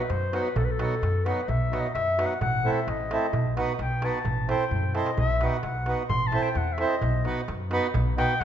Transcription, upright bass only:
0.10 F#2
0.56 B1
1.02 F#2
1.48 B1
1.95 F#2
2.41 A1
2.87 A1
3.33 B1
3.79 B1
4.25 A1
4.71 F#2
5.17 B1
5.63 B1
6.09 A1
6.55 E2
7.02 B1
7.48 F#2
7.95 B1
8.40 A1

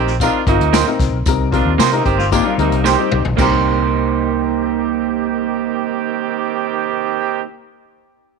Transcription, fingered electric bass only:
Already playing: A#1
0.47 G1
0.60 D2
0.99 C2
1.12 B1
1.26 C2
1.65 D#2
1.79 C3
2.05 G1
2.58 D2
2.72 C2
3.12 C2
3.26 B1
3.38 C2

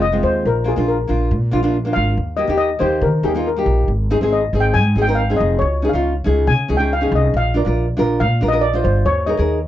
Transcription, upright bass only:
Already playing: F1
0.23 D#2
0.45 A#1
0.77 A#1
1.10 A#1
1.31 A#2
1.53 A#1
1.96 G#1
2.17 D#2
2.48 D#2
2.81 D#2
3.01 D#3
3.23 D#2
3.66 A#1
3.88 G#1
4.21 G#1
4.53 G#1
4.74 G#2
4.95 G#1
5.40 F1
5.62 C#2
5.93 C#2
6.26 C#2
6.47 C#3
6.69 C#2
7.12 C2
7.34 A#1
7.66 A#1
7.99 A#1
8.21 A#2
8.42 A#1
8.85 G1
9.06 D#2
9.39 D#2

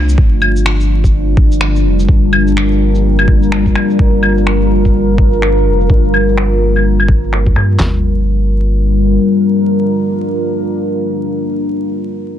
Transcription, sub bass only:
Already playing: C2
0.18 G1
1.84 F1
2.08 G1
3.99 G1
5.66 F1
5.90 G1
7.46 D2
7.56 G2
7.79 G1

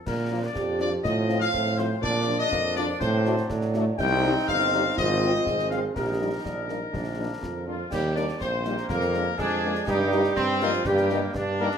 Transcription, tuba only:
0.06 A#2
0.55 F2
1.04 A2
1.53 A2
2.02 A#2
2.52 F2
3.01 A2
3.50 A2
3.99 C2
4.48 G1
4.98 G#1
5.47 G#1
5.95 A#1
6.45 A#1
6.93 A#1
7.42 F2
7.91 D#2
8.41 A#1
8.90 F2
9.39 F2
9.88 G2
10.37 G2
10.86 G2
11.34 G2

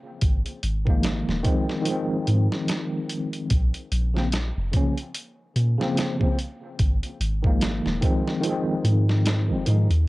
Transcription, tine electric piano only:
0.85 D#3 F3 G#3
0.90 A#3
1.43 D#3 F3 G#3
1.47 C4
1.82 D#3 F3
1.88 G#3 C4
4.14 C#3 F3 A#3
4.18 C4
4.72 C#3 F3 A#3
4.76 C#4
5.78 C#3 F3 A#3
5.82 C4
6.19 C#3 F3 A#3
6.23 C4
7.42 D#3 F3 G#3
7.47 A#3
8.01 D#3 F3 G#3
8.05 C4
8.40 D#3 F3
8.46 G#3 C4
9.48 D#3 F3 G#3
9.53 C4
9.65 D#3 F3 G#3
9.70 D#4

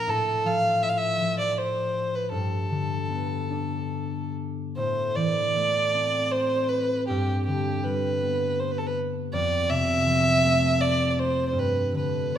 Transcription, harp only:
Already playing: A#2 F3 A#3 D4
0.07 A2
0.45 F3
0.82 F4
1.20 F3
2.31 G2
2.70 D3
3.10 B3
3.51 D4
4.77 A2
5.16 E3
5.56 A3
5.94 C4
7.09 G2
7.47 D3
7.86 G3
8.24 B3
9.33 F2
9.70 C3
10.06 F3
10.43 A3
11.52 G2
11.93 D3
12.32 B3

